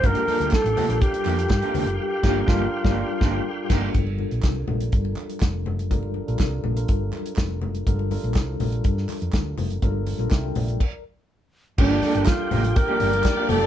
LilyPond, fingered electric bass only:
\new Staff \with { instrumentName = "Fingered electric bass" } { \clef bass \time 4/4 \key g \dorian \tempo 4 = 123 g,,16 r8 d,16 r16 a,,16 r16 bes,,16 r8 f,8 g,16 r16 d,16 ges,,16 | r8 g,,8 g,,8 r16 g,,8 r16 g,,8 r8 g,,8 | g,,8. bes,,16 c,8 bes,,8 g,,8 r8 f,,8 ges,,8 | g,,8. bes,,16 c,8 bes,,8 g,,8 r8 f,,8 ges,,8 |
g,,8. bes,,16 c,8 bes,,8 g,8 r16 f,16 d,8 ges,,8 | g,,8. bes,,16 c,8 bes,,8 r2 | g,,8 r16 g,,16 r8 a,,8 r8 g,,8 r8 ges,,8 | }